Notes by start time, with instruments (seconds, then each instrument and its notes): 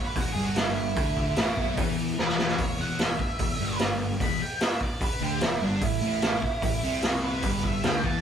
0.05 lead electric guitar B4
0.16 fingered electric bass E1, distorted electric guitar E2, lead electric guitar F#4, kick, open hi-hat
0.32 distorted electric guitar G2, lead electric guitar G#4
0.37 fingered electric bass G1
0.45 lead electric guitar F#4
0.56 lead electric guitar E4, snare, open hi-hat
0.72 lead electric guitar E4
0.96 fingered electric bass D2, distorted electric guitar D3, kick, open hi-hat
1.17 kick
1.36 fingered electric bass A1, distorted electric guitar A2, snare, open hi-hat
1.57 fingered electric bass B1, distorted electric guitar B2, kick
1.77 fingered electric bass E2, distorted electric guitar E3, kick, open hi-hat
2.18 fingered electric bass E1, distorted electric guitar E2, lead electric guitar B4, snare
2.28 snare
2.39 snare
2.48 snare
2.58 fingered electric bass E1, distorted electric guitar E2, lead electric guitar C#5, kick, open hi-hat
2.79 fingered electric bass E1, distorted electric guitar E2, lead electric guitar F#5
2.99 lead electric guitar E5, snare, open hi-hat
3.19 muted fingered electric bass stroke, muted distorted electric guitar stroke, kick
3.39 fingered electric bass E1, distorted electric guitar E2, kick, open hi-hat
3.60 fingered electric bass G1, distorted electric guitar G2
3.79 snare, open hi-hat
4.20 fingered electric bass E1, distorted electric guitar E2, lead electric guitar B5, kick, open hi-hat
4.42 lead electric guitar G5
4.60 lead electric guitar E5, snare, open hi-hat
4.81 lead electric guitar D5, kick
5.01 lead electric guitar B4, kick, open hi-hat
5.21 fingered electric bass D2, distorted electric guitar D3, lead electric guitar G4
5.41 fingered electric bass E1, distorted electric guitar E2, lead electric guitar E4, snare, open hi-hat
5.62 fingered electric bass G1, distorted electric guitar G2, lead electric guitar D4
5.81 fingered electric bass A1, distorted electric guitar A2, lead electric guitar E4, kick, open hi-hat
6.02 fingered electric bass A1, distorted electric guitar A2
6.22 snare, open hi-hat
6.42 muted distorted electric guitar stroke, muted fingered electric bass stroke, kick
6.62 fingered electric bass A1, distorted electric guitar A2, kick, open hi-hat
6.83 fingered electric bass C2, distorted electric guitar C3
7.02 snare, open hi-hat
7.24 lead electric guitar B4
7.42 fingered electric bass G1, distorted electric guitar G2, kick, open hi-hat
7.63 lead electric guitar E5, kick
7.83 fingered electric bass D2, distorted electric guitar D3, lead electric guitar G5, snare, open hi-hat
8.04 fingered electric bass E2, distorted electric guitar E3, lead electric guitar A5, kick